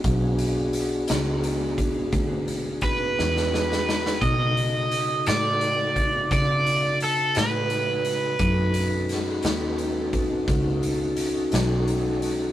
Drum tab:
HH |x-x-x-x-x-x-x-x-x-------|x-x-x-x-x-x-x-x-x-x-x-x-|x-x-x-x-x-x-x-x-x-x-x-x-|
SD |------o-----------oooooo|------o-----------o-----|----o-o-----------o-----|
BD |o---------o-o---o-------|o---------o-o-----------|o---------o-o-----------|